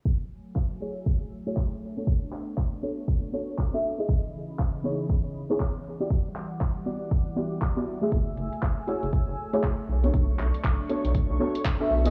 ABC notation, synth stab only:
X:1
M:4/4
L:1/16
Q:"Swing 16ths" 1/4=119
K:F#m
V:1 name="Synth stab"
z6 [A,EFGc]4- [A,EFGc] [A,EFGc]3 z [B,DFAc]- | [B,DFAc] z4 z [B,DFAc]4 [B,DFAc]3 [B,DFAe]2 [B,^DEG^d]- | [B,^DEG^d]6 [B,DEGc]4- [B,DEGc] [B,DEGc]3 z [B,EF=G=d]- | [B,EF=Gd] z4 z [B,EFGd]4 [B,EFGd]3 [B,EFGd]2 [A,EF^Ge]- |
[A,EFGe]6 [A,EFGc]4- [A,EFGc] [A,EFGc]3 z [B,DFAc]- | [B,DFAc] z4 z [B,DFAc]4 [B,DFAc]3 [B,DFAe]2 [B,^DEG^d] |]